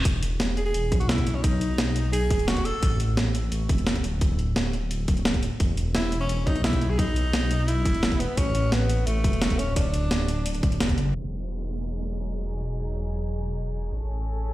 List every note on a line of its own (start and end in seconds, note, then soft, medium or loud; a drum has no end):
0.05 0.73 E1 medium
0.05 kick loud
0.05 closed hi-hat loud
0.23 closed hi-hat medium
0.40 snare loud
0.40 closed hi-hat loud
0.57 0.65 G#4 medium
0.57 closed hi-hat medium
0.66 0.98 G#4 loud
0.74 0.93 E1 medium
0.74 closed hi-hat medium
0.92 1.25 B1 loud
0.92 kick loud
0.92 closed hi-hat medium
1.00 1.10 F#4 medium
1.00 closed hi-hat soft
1.09 1.36 E4 medium
1.09 snare loud
1.09 closed hi-hat medium
1.18 kick medium
1.18 closed hi-hat soft
1.27 2.32 B1 medium
1.27 closed hi-hat medium
1.35 1.45 C#4 medium
1.43 2.12 D#4 loud
1.43 kick loud
1.43 closed hi-hat medium
1.61 closed hi-hat medium
1.78 snare loud
1.78 closed hi-hat medium
1.96 closed hi-hat medium
2.13 2.49 G#4 loud
2.13 closed hi-hat medium
2.30 2.73 E1 medium
2.30 kick loud
2.30 closed hi-hat medium
2.39 closed hi-hat soft
2.47 2.67 F#4 loud
2.47 snare loud
2.47 closed hi-hat medium
2.57 kick medium
2.57 closed hi-hat soft
2.65 3.00 A4 loud
2.65 closed hi-hat medium
2.83 3.51 A1 medium
2.83 kick loud
2.83 closed hi-hat medium
3.00 closed hi-hat medium
3.17 snare loud
3.17 closed hi-hat medium
3.35 closed hi-hat medium
3.52 3.71 A1 medium
3.52 closed hi-hat medium
3.69 4.03 E1 loud
3.69 kick loud
3.69 closed hi-hat medium
3.78 closed hi-hat soft
3.87 snare loud
3.87 closed hi-hat loud
3.95 kick medium
3.95 closed hi-hat soft
4.04 5.07 D1 medium
4.04 closed hi-hat medium
4.21 kick loud
4.21 closed hi-hat medium
4.39 closed hi-hat medium
4.56 snare loud
4.56 closed hi-hat medium
4.73 closed hi-hat medium
4.91 closed hi-hat medium
5.08 5.50 D1 medium
5.08 kick loud
5.08 closed hi-hat medium
5.17 closed hi-hat soft
5.25 snare loud
5.25 closed hi-hat medium
5.34 kick medium
5.34 closed hi-hat soft
5.43 closed hi-hat medium
5.60 6.28 E1 medium
5.60 kick loud
5.60 closed hi-hat medium
5.77 closed hi-hat medium
5.95 6.19 E4 loud
5.95 snare loud
5.95 closed hi-hat medium
6.12 closed hi-hat medium
6.21 6.48 C#4 loud
6.29 6.48 E1 medium
6.29 closed hi-hat medium
6.47 6.80 B1 loud
6.47 6.63 D#4 loud
6.47 kick loud
6.47 closed hi-hat medium
6.56 closed hi-hat soft
6.64 6.91 E4 loud
6.64 snare loud
6.64 closed hi-hat medium
6.73 kick medium
6.73 closed hi-hat soft
6.81 7.87 B1 medium
6.81 closed hi-hat medium
6.90 7.00 G#4 loud
6.99 7.69 D#4 loud
6.99 kick loud
6.99 closed hi-hat loud
7.16 closed hi-hat medium
7.33 snare loud
7.33 closed hi-hat medium
7.51 closed hi-hat medium
7.68 8.22 E4 loud
7.68 closed hi-hat medium
7.85 8.28 E1 medium
7.85 kick loud
7.85 closed hi-hat medium
7.94 closed hi-hat soft
8.03 snare loud
8.03 closed hi-hat medium
8.12 kick medium
8.12 closed hi-hat soft
8.20 8.39 B3 medium
8.20 closed hi-hat medium
8.37 9.06 A1 loud
8.37 8.74 C#4 loud
8.37 kick loud
8.37 closed hi-hat medium
8.55 closed hi-hat medium
8.72 9.08 B3 loud
8.72 snare loud
8.72 closed hi-hat loud
8.89 closed hi-hat medium
9.07 9.26 A1 medium
9.07 9.60 A3 medium
9.07 closed hi-hat loud
9.24 9.58 E1 loud
9.24 kick loud
9.24 closed hi-hat medium
9.33 closed hi-hat soft
9.42 snare loud
9.42 closed hi-hat medium
9.50 kick medium
9.50 closed hi-hat soft
9.59 10.62 D1 medium
9.59 9.76 C#4 medium
9.59 closed hi-hat medium
9.76 10.76 D4 loud
9.76 kick loud
9.76 closed hi-hat loud
9.94 closed hi-hat medium
10.11 snare loud
10.11 closed hi-hat loud
10.28 closed hi-hat medium
10.46 closed hi-hat loud
10.55 closed hi-hat soft
10.63 10.82 D1 medium
10.63 kick loud
10.63 closed hi-hat medium
10.72 closed hi-hat soft
10.80 10.96 E1 medium
10.80 snare loud
10.80 closed hi-hat loud
10.89 kick medium
10.89 closed hi-hat soft
10.98 11.13 F#1 medium
10.98 closed hi-hat medium
11.15 13.91 E1 medium
11.15 13.90 F#3 medium
11.15 13.90 D#4 medium
11.15 13.90 G#4 medium
11.15 crash medium
11.15 downlifter medium
13.06 tambourine medium
13.40 tambourine medium
13.75 tambourine medium
13.92 14.54 A1 medium
13.92 14.54 C#4 medium
13.92 14.54 G#4 medium
13.92 14.54 A4 medium
14.10 tambourine medium
14.45 tambourine medium